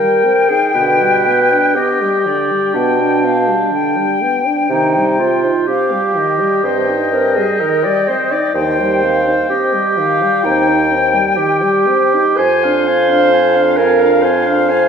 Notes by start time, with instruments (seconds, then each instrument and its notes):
Already playing: clarinet A#4, oboe G5, flute G5
0.00 french horn G3
0.24 french horn C4
0.48 french horn D#4, clarinet G#4
0.74 bassoon B2, french horn D3, clarinet B4, oboe G5
1.02 french horn G3
1.27 french horn B3
1.51 french horn D4
1.74 french horn B3, clarinet G4, flute D#5
2.01 french horn G3
2.27 french horn D3, flute D5
2.51 french horn G3
2.74 bassoon B2, french horn B3, clarinet D4, flute G5
3.00 french horn D4
3.24 french horn B3, flute F5
3.48 french horn G3
3.72 french horn D3, flute G5
3.97 french horn G3
4.22 french horn B3
4.47 french horn D4
4.69 bassoon C3, french horn D#3, clarinet D#4, oboe G5
4.96 french horn G3
5.19 french horn C4, clarinet F4
5.45 french horn D#4
5.67 french horn C4, clarinet G4, flute F5
5.92 french horn G3
6.16 french horn D#3, flute D#5
6.41 french horn G3
6.63 bassoon G2, french horn C4, clarinet C5, flute D#5
6.90 french horn D#4
7.12 french horn C4, clarinet A#4
7.36 french horn G3, clarinet G#4
7.60 french horn D#3, clarinet A#4
7.83 french horn G3, clarinet D5
8.08 french horn C4, clarinet C5
8.31 french horn D#4, clarinet D5
8.55 bassoon D#2, french horn D#3, clarinet C5, flute G5, oboe G5
8.80 french horn G3
9.03 french horn C4, flute F5
9.28 french horn D#4
9.50 french horn C4, clarinet G4, flute D#5
9.74 french horn G3
9.98 french horn D#3, flute F5
10.22 french horn G3
10.44 bassoon D#2, french horn C4, clarinet D#4, flute G5
10.69 french horn D#4
10.92 french horn C4
11.14 french horn G3
11.36 french horn D#3, clarinet G4
11.62 french horn G3
11.88 french horn C4
12.14 french horn D#4
12.37 bassoon F2, french horn C4, clarinet C5, oboe G#5, flute G#5
12.63 french horn D4, oboe F5
12.86 french horn C4, flute F5, oboe G#5
13.10 french horn D4, oboe F5
13.33 french horn C4, oboe G#5
13.55 french horn D4, oboe F5
13.77 french horn C4, clarinet A#4, oboe G#5
14.00 french horn D4, oboe F5
14.22 french horn C4, clarinet C5, oboe G#5
14.46 french horn D4, oboe F5
14.69 french horn C4, oboe G#5